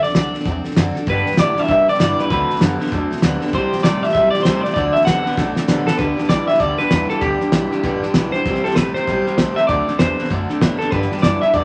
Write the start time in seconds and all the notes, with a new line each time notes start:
0.03 C4 D4 A4 D5, snare
0.09 snare
0.14 C2 D3 F#3 C4 D4 A4, snare, hi-hat pedal
0.34 C4 D4 A4, muted upright bass stroke, snare
0.40 snare
0.45 E2 F#3 C4 D4 A4, kick, snare
0.64 C4 D4 A4, muted upright bass stroke, snare
0.71 snare
0.76 F#2 D3 F#3 C4 D4 A4, snare, hi-hat pedal
0.95 C4 D4 A4, muted upright bass stroke, snare
1.06 G2 D3 G3 B3 D4 G4 B4, kick, snare
1.26 G3 B3 D4 G4, snare
1.32 snare
1.37 G2 A2 D3 E3 G3 B3 D4 G4 D5, snare, hi-hat pedal
1.57 G2 E3 G3 B3 D4 G4 E5, muted upright bass stroke, snare
1.63 snare
1.68 G2 B2 D3 G3 B3 D4 G4 E5, kick, snare
1.88 G3 B3 D4 G4 D5, muted upright bass stroke, snare
1.94 snare
1.99 G2 D3 E3 G3 B3 D4 G4 D5, snare, hi-hat pedal
2.18 G2 E3 G3 B3 D4 G4 B4, snare
2.30 D2 D3 F#3 A3 C4 D4 A4 B4, kick, snare
2.50 C4 D4 A4, snare
2.56 snare
2.61 F#2 D3 F#3 B3 C4 D4 A4, snare, hi-hat pedal
2.80 D3 B3 C4 D4 A4, snare
2.87 snare
2.92 E2 D3 F#3 A3 C4 D4 A4, kick, snare
3.11 C4 D4 A4, snare
3.17 snare
3.22 D2 D3 F#3 B3 C4 D4 A4, snare, hi-hat pedal
3.41 D3 B3 C4 D4 A4, snare
3.47 snare
3.53 C2 C3 G3 C4 E4 G4 C5, kick, snare
3.73 C4 E4 G4, muted upright bass stroke, snare
3.78 snare
3.83 A1 C3 G3 A3 C4 E4 G4 D5, snare, hi-hat pedal
4.03 C3 A3 C4 E4 G4 E5, muted upright bass stroke, snare
4.09 E5, snare
4.15 B1 C3 G3 C4 E4 G4, kick, snare
4.31 G4 D5, snare
4.35 C4 E4
4.39 C5, snare
4.44 C2 C3 G3 A3 C4 E4 G4, snare, hi-hat pedal
4.61 G4 D5, muted upright bass stroke
4.65 C3 A3 C4 E4, snare
4.70 D5, snare
4.76 D2 D3 F#3 A3 C4 D4 A4, kick, snare
4.93 D4 A4 E5, muted upright bass stroke, snare
4.97 C4
5.02 F#5, snare
5.06 C2 D3 F#3 B3 C4 D4 A4, snare, hi-hat pedal
5.26 D3 B3 C4 D4 A4, muted upright bass stroke, snare
5.32 snare
5.37 B1 D3 F#3 A3 C4 D4 A4, kick, snare
5.55 C4 D4 A4, muted upright bass stroke, snare
5.68 A1 D3 F#3 B3 C4 D4 A4, snare, hi-hat pedal
5.86 D3 B3 C4 D4 A4, muted upright bass stroke, snare
5.98 D2 G2 D3 G3 B3 D4 G4 B4, kick, snare
6.17 G2 D3 G3 B3 D4 G4, snare
6.24 G3, snare
6.29 C2 G2 E3 B3 D4 G4 D5, kick, snare, hi-hat pedal
6.47 G2 E3 G3 B3 D4 G4 E5, muted upright bass stroke, snare
6.54 snare
6.59 D2 G2 D3 G3 B3 D4 G4 D5, kick, snare
6.78 G2 D3 G3 B3 D4 G4 B4, snare
6.90 E2 G2 E3 G3 B3 D4 G4, kick, snare, hi-hat pedal
7.09 G2 E3 G3 B3 D4 G4 A4, muted upright bass stroke, snare
7.21 D2 G2 D3 G3 B3 D4 G4, kick, snare
7.40 G2 D3 G3 B3 D4 G4, snare
7.52 B1 G2 E3 G3 B3 D4 G4, kick, snare, hi-hat pedal
7.71 G2 E3 G3 B3 D4 G4, muted upright bass stroke, snare
7.83 A1 G2 D3 G3 B3 D4 G4, kick, snare
8.03 G2 D3 G3 B3 D4 G4, muted upright bass stroke, snare
8.14 B1 G2 E3 G3 B3 D4 G4, kick, snare, hi-hat pedal
8.32 G2 E3 D4 G4 C5, muted upright bass stroke, snare
8.36 G3 B3
8.45 C2 C3 G3 C4 E4 G4, kick, snare
8.55 snare
8.64 C3 G3 C4 E4 G4 A4, muted upright bass stroke, snare
8.71 snare
8.75 A1 C3 G3 A3 C4 E4 G4 B4, kick, snare, hi-hat pedal
8.94 C3 A3 C4 E4 G4 C5, muted upright bass stroke, snare
9.07 B1 C3 G3 C4 E4 G4, kick, snare
9.27 C3 G3 C4 E4 G4, muted upright bass stroke, snare
9.38 C2 C3 G3 A3 C4 E4 G4, kick, snare, hi-hat pedal
9.56 C3 A3 C4 E4 G4 E5, muted upright bass stroke, snare
9.67 D2 D3 F#3 A3 C4 D4 A4 D5, kick, snare
9.87 D3 A3 C4 D4 A4, snare
9.99 E2 D3 F#3 B3 C4 D4 A4 C5, kick, snare, hi-hat pedal
10.18 D3 B3 C4 D4 A4, snare
10.25 snare
10.30 F#2 D3 F#3 A3 C4 D4 A4, kick, snare
10.49 D3 A3 C4 D4 A4, snare
10.61 A2 D3 F#3 B3 C4 D4 A4, kick, snare, hi-hat pedal
10.79 D3 B3 C4 D4 A4, snare
10.91 G2 D3 G3 B3 D4 G4 B4, kick, snare
11.02 snare
11.10 G2 D3 G3 B3 D4 G4, snare
11.17 snare
11.22 F#2 G2 E3 G3 B3 D4 G4 D5, kick, snare, hi-hat pedal
11.41 G2 E3 G3 B3 D4 G4 E5, snare
11.53 E2 G2 D3 G3 B3 D4 G4 D5, kick, snare